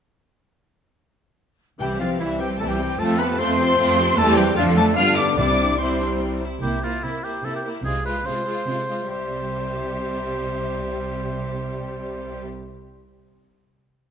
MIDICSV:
0, 0, Header, 1, 11, 480
1, 0, Start_track
1, 0, Key_signature, 0, "major"
1, 0, Tempo, 404585
1, 2143, Time_signature, 3, 2, 24, 8
1, 2619, Tempo, 394737
1, 5979, Tempo, 409556
1, 9819, Tempo, 428878
1, 16377, End_track
2, 0, Start_track
2, 0, Title_t, "Flute section"
2, 0, Program_c, 0, 73
2, 2134, Note_on_c, 0, 79, 51
2, 2360, Note_off_c, 0, 79, 0
2, 2379, Note_on_c, 0, 77, 47
2, 2613, Note_off_c, 0, 77, 0
2, 2622, Note_on_c, 0, 76, 49
2, 2861, Note_off_c, 0, 76, 0
2, 2869, Note_on_c, 0, 79, 55
2, 3095, Note_on_c, 0, 81, 52
2, 3099, Note_off_c, 0, 79, 0
2, 3150, Note_off_c, 0, 81, 0
2, 3207, Note_on_c, 0, 79, 59
2, 3568, Note_off_c, 0, 79, 0
2, 3586, Note_on_c, 0, 81, 66
2, 3823, Note_on_c, 0, 83, 71
2, 3825, Note_off_c, 0, 81, 0
2, 4063, Note_off_c, 0, 83, 0
2, 4078, Note_on_c, 0, 84, 78
2, 5003, Note_off_c, 0, 84, 0
2, 5020, Note_on_c, 0, 81, 92
2, 5250, Note_on_c, 0, 79, 74
2, 5255, Note_off_c, 0, 81, 0
2, 5490, Note_off_c, 0, 79, 0
2, 5494, Note_on_c, 0, 77, 80
2, 5735, Note_off_c, 0, 77, 0
2, 5736, Note_on_c, 0, 81, 75
2, 5980, Note_off_c, 0, 81, 0
2, 5981, Note_on_c, 0, 89, 76
2, 6052, Note_off_c, 0, 89, 0
2, 6227, Note_on_c, 0, 86, 66
2, 6450, Note_off_c, 0, 86, 0
2, 6464, Note_on_c, 0, 86, 67
2, 6941, Note_off_c, 0, 86, 0
2, 6947, Note_on_c, 0, 84, 49
2, 7424, Note_off_c, 0, 84, 0
2, 16377, End_track
3, 0, Start_track
3, 0, Title_t, "Violin section"
3, 0, Program_c, 1, 48
3, 2135, Note_on_c, 1, 79, 67
3, 2230, Note_off_c, 1, 79, 0
3, 2373, Note_on_c, 1, 77, 55
3, 2609, Note_off_c, 1, 77, 0
3, 2623, Note_on_c, 1, 76, 63
3, 2858, Note_on_c, 1, 79, 66
3, 2861, Note_off_c, 1, 76, 0
3, 3090, Note_on_c, 1, 81, 68
3, 3098, Note_off_c, 1, 79, 0
3, 3202, Note_on_c, 1, 79, 67
3, 3214, Note_off_c, 1, 81, 0
3, 3572, Note_off_c, 1, 79, 0
3, 3585, Note_on_c, 1, 81, 86
3, 3681, Note_off_c, 1, 81, 0
3, 3814, Note_on_c, 1, 83, 80
3, 3911, Note_off_c, 1, 83, 0
3, 4074, Note_on_c, 1, 84, 103
3, 5001, Note_off_c, 1, 84, 0
3, 5005, Note_on_c, 1, 81, 127
3, 5248, Note_off_c, 1, 81, 0
3, 5258, Note_on_c, 1, 79, 96
3, 5493, Note_on_c, 1, 77, 99
3, 5494, Note_off_c, 1, 79, 0
3, 5590, Note_off_c, 1, 77, 0
3, 5739, Note_on_c, 1, 81, 95
3, 5836, Note_off_c, 1, 81, 0
3, 5989, Note_on_c, 1, 89, 94
3, 6219, Note_on_c, 1, 86, 83
3, 6220, Note_off_c, 1, 89, 0
3, 6439, Note_off_c, 1, 86, 0
3, 6453, Note_on_c, 1, 86, 89
3, 6935, Note_off_c, 1, 86, 0
3, 6952, Note_on_c, 1, 84, 68
3, 7437, Note_off_c, 1, 84, 0
3, 7922, Note_on_c, 1, 72, 53
3, 8145, Note_off_c, 1, 72, 0
3, 8159, Note_on_c, 1, 72, 42
3, 8387, Note_off_c, 1, 72, 0
3, 8401, Note_on_c, 1, 72, 41
3, 8621, Note_off_c, 1, 72, 0
3, 8635, Note_on_c, 1, 72, 41
3, 8859, Note_off_c, 1, 72, 0
3, 8873, Note_on_c, 1, 72, 38
3, 9095, Note_off_c, 1, 72, 0
3, 9109, Note_on_c, 1, 72, 41
3, 9328, Note_off_c, 1, 72, 0
3, 9342, Note_on_c, 1, 72, 48
3, 9550, Note_off_c, 1, 72, 0
3, 9564, Note_on_c, 1, 72, 43
3, 9788, Note_off_c, 1, 72, 0
3, 9802, Note_on_c, 1, 72, 47
3, 10026, Note_off_c, 1, 72, 0
3, 10039, Note_on_c, 1, 72, 49
3, 10251, Note_off_c, 1, 72, 0
3, 10264, Note_on_c, 1, 72, 42
3, 10503, Note_off_c, 1, 72, 0
3, 10516, Note_on_c, 1, 72, 39
3, 10760, Note_off_c, 1, 72, 0
3, 10760, Note_on_c, 1, 76, 42
3, 14492, Note_off_c, 1, 76, 0
3, 16377, End_track
4, 0, Start_track
4, 0, Title_t, "Clarinet"
4, 0, Program_c, 2, 71
4, 2142, Note_on_c, 2, 67, 52
4, 2365, Note_off_c, 2, 67, 0
4, 2386, Note_on_c, 2, 65, 46
4, 2492, Note_off_c, 2, 65, 0
4, 2635, Note_on_c, 2, 64, 50
4, 2739, Note_off_c, 2, 64, 0
4, 2855, Note_on_c, 2, 67, 51
4, 2963, Note_off_c, 2, 67, 0
4, 3092, Note_on_c, 2, 69, 52
4, 3148, Note_off_c, 2, 69, 0
4, 3218, Note_on_c, 2, 67, 53
4, 3381, Note_off_c, 2, 67, 0
4, 3573, Note_on_c, 2, 69, 70
4, 3825, Note_on_c, 2, 71, 69
4, 3844, Note_off_c, 2, 69, 0
4, 4059, Note_on_c, 2, 72, 79
4, 4077, Note_off_c, 2, 71, 0
4, 5012, Note_off_c, 2, 72, 0
4, 5023, Note_on_c, 2, 69, 95
4, 5128, Note_off_c, 2, 69, 0
4, 5267, Note_on_c, 2, 67, 65
4, 5488, Note_off_c, 2, 67, 0
4, 5495, Note_on_c, 2, 65, 79
4, 5724, Note_off_c, 2, 65, 0
4, 5732, Note_on_c, 2, 69, 74
4, 5843, Note_off_c, 2, 69, 0
4, 5967, Note_on_c, 2, 77, 75
4, 6078, Note_off_c, 2, 77, 0
4, 6209, Note_on_c, 2, 74, 77
4, 6445, Note_off_c, 2, 74, 0
4, 6452, Note_on_c, 2, 74, 71
4, 6934, Note_off_c, 2, 74, 0
4, 6948, Note_on_c, 2, 72, 51
4, 7425, Note_off_c, 2, 72, 0
4, 16377, End_track
5, 0, Start_track
5, 0, Title_t, "Oboe"
5, 0, Program_c, 3, 68
5, 2143, Note_on_c, 3, 67, 51
5, 2365, Note_off_c, 3, 67, 0
5, 2380, Note_on_c, 3, 65, 44
5, 2487, Note_off_c, 3, 65, 0
5, 2612, Note_on_c, 3, 64, 47
5, 2721, Note_off_c, 3, 64, 0
5, 2858, Note_on_c, 3, 67, 45
5, 2966, Note_off_c, 3, 67, 0
5, 3094, Note_on_c, 3, 69, 57
5, 3149, Note_off_c, 3, 69, 0
5, 3208, Note_on_c, 3, 67, 59
5, 3572, Note_on_c, 3, 69, 69
5, 3591, Note_off_c, 3, 67, 0
5, 3811, Note_on_c, 3, 71, 72
5, 3829, Note_off_c, 3, 69, 0
5, 4046, Note_off_c, 3, 71, 0
5, 4053, Note_on_c, 3, 72, 84
5, 5012, Note_on_c, 3, 69, 98
5, 5031, Note_off_c, 3, 72, 0
5, 5252, Note_on_c, 3, 67, 76
5, 5271, Note_off_c, 3, 69, 0
5, 5473, Note_off_c, 3, 67, 0
5, 5480, Note_on_c, 3, 65, 88
5, 5591, Note_off_c, 3, 65, 0
5, 5737, Note_on_c, 3, 69, 75
5, 5967, Note_off_c, 3, 69, 0
5, 5974, Note_on_c, 3, 77, 87
5, 6197, Note_off_c, 3, 77, 0
5, 6204, Note_on_c, 3, 74, 70
5, 6317, Note_off_c, 3, 74, 0
5, 6451, Note_on_c, 3, 74, 72
5, 6927, Note_off_c, 3, 74, 0
5, 6934, Note_on_c, 3, 72, 54
5, 7418, Note_off_c, 3, 72, 0
5, 7914, Note_on_c, 3, 67, 65
5, 8162, Note_on_c, 3, 65, 62
5, 8179, Note_off_c, 3, 67, 0
5, 8404, Note_on_c, 3, 64, 61
5, 8421, Note_off_c, 3, 65, 0
5, 8635, Note_on_c, 3, 67, 59
5, 8653, Note_off_c, 3, 64, 0
5, 8883, Note_on_c, 3, 69, 63
5, 8900, Note_off_c, 3, 67, 0
5, 8995, Note_off_c, 3, 69, 0
5, 9011, Note_on_c, 3, 67, 54
5, 9165, Note_off_c, 3, 67, 0
5, 9354, Note_on_c, 3, 68, 75
5, 9581, Note_off_c, 3, 68, 0
5, 9594, Note_on_c, 3, 71, 74
5, 9831, Note_on_c, 3, 72, 65
5, 9848, Note_off_c, 3, 71, 0
5, 10771, Note_off_c, 3, 72, 0
5, 10777, Note_on_c, 3, 72, 46
5, 14501, Note_off_c, 3, 72, 0
5, 16377, End_track
6, 0, Start_track
6, 0, Title_t, "Violin section"
6, 0, Program_c, 4, 48
6, 2150, Note_on_c, 4, 64, 42
6, 2151, Note_off_c, 4, 64, 0
6, 2151, Note_on_c, 4, 64, 42
6, 2369, Note_off_c, 4, 64, 0
6, 2389, Note_on_c, 4, 60, 38
6, 2393, Note_on_c, 4, 67, 40
6, 2622, Note_off_c, 4, 60, 0
6, 2624, Note_off_c, 4, 67, 0
6, 2630, Note_on_c, 4, 64, 39
6, 2634, Note_off_c, 4, 64, 0
6, 2634, Note_on_c, 4, 64, 41
6, 2863, Note_on_c, 4, 60, 42
6, 2866, Note_on_c, 4, 67, 42
6, 2867, Note_off_c, 4, 64, 0
6, 3100, Note_off_c, 4, 60, 0
6, 3102, Note_off_c, 4, 67, 0
6, 3108, Note_on_c, 4, 64, 41
6, 3111, Note_off_c, 4, 64, 0
6, 3111, Note_on_c, 4, 64, 40
6, 3329, Note_off_c, 4, 64, 0
6, 3352, Note_on_c, 4, 60, 43
6, 3357, Note_on_c, 4, 67, 42
6, 3586, Note_on_c, 4, 65, 54
6, 3587, Note_on_c, 4, 57, 53
6, 3588, Note_off_c, 4, 60, 0
6, 3590, Note_off_c, 4, 67, 0
6, 3809, Note_off_c, 4, 57, 0
6, 3809, Note_off_c, 4, 65, 0
6, 3823, Note_on_c, 4, 60, 52
6, 3831, Note_on_c, 4, 69, 59
6, 4063, Note_off_c, 4, 60, 0
6, 4067, Note_off_c, 4, 69, 0
6, 4075, Note_on_c, 4, 65, 59
6, 4080, Note_on_c, 4, 57, 56
6, 4302, Note_on_c, 4, 69, 61
6, 4305, Note_on_c, 4, 60, 59
6, 4308, Note_off_c, 4, 65, 0
6, 4311, Note_off_c, 4, 57, 0
6, 4539, Note_off_c, 4, 69, 0
6, 4541, Note_off_c, 4, 60, 0
6, 4547, Note_on_c, 4, 65, 58
6, 4550, Note_on_c, 4, 57, 63
6, 4764, Note_off_c, 4, 65, 0
6, 4766, Note_off_c, 4, 57, 0
6, 4780, Note_on_c, 4, 60, 55
6, 4783, Note_on_c, 4, 69, 57
6, 5008, Note_off_c, 4, 60, 0
6, 5018, Note_off_c, 4, 69, 0
6, 5019, Note_on_c, 4, 67, 72
6, 5023, Note_on_c, 4, 60, 72
6, 5460, Note_off_c, 4, 67, 0
6, 5462, Note_off_c, 4, 60, 0
6, 5495, Note_on_c, 4, 62, 72
6, 5731, Note_on_c, 4, 60, 59
6, 5828, Note_off_c, 4, 60, 0
6, 5971, Note_off_c, 4, 62, 0
6, 5984, Note_on_c, 4, 59, 57
6, 5985, Note_on_c, 4, 62, 60
6, 6456, Note_off_c, 4, 59, 0
6, 6456, Note_off_c, 4, 62, 0
6, 6468, Note_on_c, 4, 64, 52
6, 6472, Note_on_c, 4, 60, 50
6, 6936, Note_off_c, 4, 64, 0
6, 6950, Note_on_c, 4, 64, 67
6, 6954, Note_off_c, 4, 60, 0
6, 7176, Note_off_c, 4, 64, 0
6, 7188, Note_on_c, 4, 62, 59
6, 7281, Note_off_c, 4, 62, 0
6, 7433, Note_on_c, 4, 60, 53
6, 7673, Note_off_c, 4, 60, 0
6, 7680, Note_on_c, 4, 64, 54
6, 7908, Note_off_c, 4, 64, 0
6, 7922, Note_on_c, 4, 64, 50
6, 8149, Note_off_c, 4, 64, 0
6, 8163, Note_on_c, 4, 64, 41
6, 8387, Note_off_c, 4, 64, 0
6, 8401, Note_on_c, 4, 64, 38
6, 8618, Note_off_c, 4, 64, 0
6, 8633, Note_on_c, 4, 64, 40
6, 8860, Note_off_c, 4, 64, 0
6, 8874, Note_on_c, 4, 64, 39
6, 9100, Note_off_c, 4, 64, 0
6, 9114, Note_on_c, 4, 64, 37
6, 9341, Note_off_c, 4, 64, 0
6, 9359, Note_on_c, 4, 65, 48
6, 9572, Note_off_c, 4, 65, 0
6, 9586, Note_on_c, 4, 65, 47
6, 9819, Note_off_c, 4, 65, 0
6, 9842, Note_on_c, 4, 65, 43
6, 10059, Note_off_c, 4, 65, 0
6, 10073, Note_on_c, 4, 65, 42
6, 10283, Note_off_c, 4, 65, 0
6, 10297, Note_on_c, 4, 65, 41
6, 10518, Note_off_c, 4, 65, 0
6, 10532, Note_on_c, 4, 65, 39
6, 10768, Note_off_c, 4, 65, 0
6, 10778, Note_on_c, 4, 67, 38
6, 14501, Note_off_c, 4, 67, 0
6, 16377, End_track
7, 0, Start_track
7, 0, Title_t, "French horn section"
7, 0, Program_c, 5, 60
7, 2138, Note_on_c, 5, 52, 42
7, 2140, Note_on_c, 5, 60, 45
7, 2583, Note_off_c, 5, 52, 0
7, 2584, Note_off_c, 5, 60, 0
7, 2613, Note_on_c, 5, 60, 42
7, 2614, Note_on_c, 5, 52, 46
7, 3558, Note_off_c, 5, 60, 0
7, 3559, Note_off_c, 5, 52, 0
7, 3578, Note_on_c, 5, 57, 59
7, 3586, Note_on_c, 5, 60, 63
7, 4049, Note_off_c, 5, 60, 0
7, 4051, Note_off_c, 5, 57, 0
7, 4064, Note_on_c, 5, 60, 59
7, 4065, Note_on_c, 5, 57, 58
7, 4996, Note_off_c, 5, 60, 0
7, 4997, Note_off_c, 5, 57, 0
7, 5010, Note_on_c, 5, 55, 73
7, 5015, Note_on_c, 5, 60, 79
7, 5455, Note_off_c, 5, 55, 0
7, 5458, Note_off_c, 5, 60, 0
7, 5504, Note_on_c, 5, 57, 70
7, 5508, Note_on_c, 5, 62, 67
7, 5976, Note_off_c, 5, 62, 0
7, 5985, Note_off_c, 5, 57, 0
7, 5991, Note_on_c, 5, 62, 62
7, 5993, Note_on_c, 5, 59, 68
7, 6459, Note_off_c, 5, 62, 0
7, 6460, Note_off_c, 5, 59, 0
7, 6468, Note_on_c, 5, 64, 57
7, 6469, Note_on_c, 5, 60, 57
7, 6932, Note_off_c, 5, 60, 0
7, 6935, Note_off_c, 5, 64, 0
7, 6946, Note_on_c, 5, 60, 52
7, 6950, Note_on_c, 5, 64, 46
7, 7662, Note_off_c, 5, 60, 0
7, 7664, Note_off_c, 5, 64, 0
7, 16377, End_track
8, 0, Start_track
8, 0, Title_t, "Cello section"
8, 0, Program_c, 6, 48
8, 2134, Note_on_c, 6, 55, 53
8, 2361, Note_off_c, 6, 55, 0
8, 2372, Note_on_c, 6, 53, 46
8, 2613, Note_on_c, 6, 52, 50
8, 2614, Note_off_c, 6, 53, 0
8, 2853, Note_on_c, 6, 55, 53
8, 2857, Note_off_c, 6, 52, 0
8, 3085, Note_on_c, 6, 57, 60
8, 3091, Note_off_c, 6, 55, 0
8, 3209, Note_on_c, 6, 55, 59
8, 3212, Note_off_c, 6, 57, 0
8, 3569, Note_off_c, 6, 55, 0
8, 3574, Note_on_c, 6, 57, 74
8, 3816, Note_on_c, 6, 59, 68
8, 3819, Note_off_c, 6, 57, 0
8, 4057, Note_on_c, 6, 60, 84
8, 4060, Note_off_c, 6, 59, 0
8, 4993, Note_off_c, 6, 60, 0
8, 5016, Note_on_c, 6, 57, 98
8, 5245, Note_on_c, 6, 55, 80
8, 5253, Note_off_c, 6, 57, 0
8, 5487, Note_off_c, 6, 55, 0
8, 5489, Note_on_c, 6, 53, 86
8, 5727, Note_off_c, 6, 53, 0
8, 5728, Note_on_c, 6, 57, 90
8, 5977, Note_off_c, 6, 57, 0
8, 5977, Note_on_c, 6, 65, 87
8, 6214, Note_off_c, 6, 65, 0
8, 6215, Note_on_c, 6, 62, 73
8, 6446, Note_off_c, 6, 62, 0
8, 6460, Note_on_c, 6, 62, 66
8, 6938, Note_off_c, 6, 62, 0
8, 6949, Note_on_c, 6, 60, 49
8, 7425, Note_off_c, 6, 60, 0
8, 7922, Note_on_c, 6, 48, 58
8, 8321, Note_off_c, 6, 48, 0
8, 8402, Note_on_c, 6, 48, 48
8, 8798, Note_off_c, 6, 48, 0
8, 8877, Note_on_c, 6, 48, 52
8, 9268, Note_off_c, 6, 48, 0
8, 9349, Note_on_c, 6, 48, 56
8, 9745, Note_off_c, 6, 48, 0
8, 9826, Note_on_c, 6, 48, 55
8, 10214, Note_off_c, 6, 48, 0
8, 10289, Note_on_c, 6, 48, 61
8, 10695, Note_off_c, 6, 48, 0
8, 10770, Note_on_c, 6, 48, 42
8, 14497, Note_off_c, 6, 48, 0
8, 16377, End_track
9, 0, Start_track
9, 0, Title_t, "Viola section"
9, 0, Program_c, 7, 48
9, 2131, Note_on_c, 7, 52, 40
9, 2133, Note_on_c, 7, 55, 42
9, 2359, Note_off_c, 7, 52, 0
9, 2360, Note_off_c, 7, 55, 0
9, 2376, Note_on_c, 7, 52, 38
9, 2381, Note_on_c, 7, 48, 38
9, 2607, Note_off_c, 7, 52, 0
9, 2618, Note_off_c, 7, 48, 0
9, 2621, Note_on_c, 7, 52, 38
9, 2621, Note_on_c, 7, 55, 40
9, 2848, Note_off_c, 7, 52, 0
9, 2861, Note_off_c, 7, 55, 0
9, 2863, Note_on_c, 7, 52, 36
9, 2869, Note_on_c, 7, 48, 39
9, 3085, Note_off_c, 7, 52, 0
9, 3097, Note_on_c, 7, 55, 43
9, 3100, Note_on_c, 7, 52, 46
9, 3103, Note_off_c, 7, 48, 0
9, 3321, Note_off_c, 7, 55, 0
9, 3323, Note_off_c, 7, 52, 0
9, 3333, Note_on_c, 7, 48, 43
9, 3338, Note_on_c, 7, 52, 43
9, 3574, Note_on_c, 7, 53, 58
9, 3575, Note_on_c, 7, 57, 58
9, 3578, Note_off_c, 7, 48, 0
9, 3580, Note_off_c, 7, 52, 0
9, 3802, Note_off_c, 7, 53, 0
9, 3802, Note_off_c, 7, 57, 0
9, 3817, Note_on_c, 7, 53, 52
9, 3822, Note_on_c, 7, 48, 51
9, 4040, Note_off_c, 7, 53, 0
9, 4054, Note_on_c, 7, 57, 54
9, 4055, Note_on_c, 7, 53, 53
9, 4063, Note_off_c, 7, 48, 0
9, 4283, Note_off_c, 7, 53, 0
9, 4297, Note_off_c, 7, 57, 0
9, 4298, Note_on_c, 7, 48, 51
9, 4298, Note_on_c, 7, 53, 51
9, 4529, Note_off_c, 7, 53, 0
9, 4538, Note_off_c, 7, 48, 0
9, 4541, Note_on_c, 7, 57, 59
9, 4544, Note_on_c, 7, 53, 60
9, 4752, Note_off_c, 7, 53, 0
9, 4761, Note_off_c, 7, 57, 0
9, 4767, Note_on_c, 7, 53, 59
9, 4771, Note_on_c, 7, 48, 54
9, 5010, Note_off_c, 7, 53, 0
9, 5011, Note_off_c, 7, 48, 0
9, 5015, Note_on_c, 7, 52, 74
9, 5017, Note_on_c, 7, 55, 71
9, 5457, Note_off_c, 7, 52, 0
9, 5459, Note_off_c, 7, 55, 0
9, 5479, Note_on_c, 7, 57, 66
9, 5483, Note_on_c, 7, 50, 64
9, 5961, Note_off_c, 7, 50, 0
9, 5973, Note_off_c, 7, 57, 0
9, 5976, Note_on_c, 7, 50, 64
9, 5977, Note_on_c, 7, 55, 59
9, 6443, Note_off_c, 7, 55, 0
9, 6452, Note_off_c, 7, 50, 0
9, 6457, Note_on_c, 7, 55, 57
9, 6459, Note_on_c, 7, 48, 55
9, 6926, Note_off_c, 7, 55, 0
9, 6932, Note_off_c, 7, 48, 0
9, 6940, Note_on_c, 7, 55, 51
9, 6946, Note_on_c, 7, 48, 49
9, 7659, Note_off_c, 7, 55, 0
9, 7662, Note_off_c, 7, 48, 0
9, 7924, Note_on_c, 7, 58, 44
9, 8145, Note_off_c, 7, 58, 0
9, 8160, Note_on_c, 7, 58, 44
9, 8390, Note_off_c, 7, 58, 0
9, 8404, Note_on_c, 7, 58, 38
9, 8620, Note_off_c, 7, 58, 0
9, 8634, Note_on_c, 7, 58, 35
9, 8857, Note_off_c, 7, 58, 0
9, 8871, Note_on_c, 7, 58, 42
9, 9094, Note_off_c, 7, 58, 0
9, 9109, Note_on_c, 7, 58, 35
9, 9338, Note_off_c, 7, 58, 0
9, 9349, Note_on_c, 7, 56, 44
9, 9573, Note_off_c, 7, 56, 0
9, 9587, Note_on_c, 7, 56, 42
9, 9811, Note_off_c, 7, 56, 0
9, 9825, Note_on_c, 7, 56, 46
9, 10038, Note_off_c, 7, 56, 0
9, 10051, Note_on_c, 7, 56, 42
9, 10283, Note_off_c, 7, 56, 0
9, 10301, Note_on_c, 7, 56, 44
9, 10526, Note_off_c, 7, 56, 0
9, 10539, Note_on_c, 7, 56, 35
9, 10772, Note_off_c, 7, 56, 0
9, 10779, Note_on_c, 7, 55, 40
9, 14502, Note_off_c, 7, 55, 0
9, 16377, End_track
10, 0, Start_track
10, 0, Title_t, "Timpani"
10, 0, Program_c, 8, 47
10, 2139, Note_on_c, 8, 48, 54
10, 2809, Note_off_c, 8, 48, 0
10, 6463, Note_on_c, 8, 48, 70
10, 7146, Note_off_c, 8, 48, 0
10, 16377, End_track
11, 0, Start_track
11, 0, Title_t, "Double bass section"
11, 0, Program_c, 10, 48
11, 2137, Note_on_c, 10, 36, 46
11, 2560, Note_off_c, 10, 36, 0
11, 2613, Note_on_c, 10, 36, 49
11, 3039, Note_off_c, 10, 36, 0
11, 3091, Note_on_c, 10, 36, 52
11, 3520, Note_off_c, 10, 36, 0
11, 3577, Note_on_c, 10, 41, 63
11, 4004, Note_off_c, 10, 41, 0
11, 4063, Note_on_c, 10, 41, 63
11, 4483, Note_off_c, 10, 41, 0
11, 4545, Note_on_c, 10, 41, 76
11, 4961, Note_off_c, 10, 41, 0
11, 5018, Note_on_c, 10, 40, 72
11, 5459, Note_off_c, 10, 40, 0
11, 5501, Note_on_c, 10, 41, 70
11, 5983, Note_on_c, 10, 43, 69
11, 5984, Note_off_c, 10, 41, 0
11, 6465, Note_off_c, 10, 43, 0
11, 6469, Note_on_c, 10, 36, 56
11, 7657, Note_off_c, 10, 36, 0
11, 7933, Note_on_c, 10, 36, 60
11, 8327, Note_off_c, 10, 36, 0
11, 9350, Note_on_c, 10, 36, 61
11, 9746, Note_off_c, 10, 36, 0
11, 10778, Note_on_c, 10, 36, 40
11, 14501, Note_off_c, 10, 36, 0
11, 16377, End_track
0, 0, End_of_file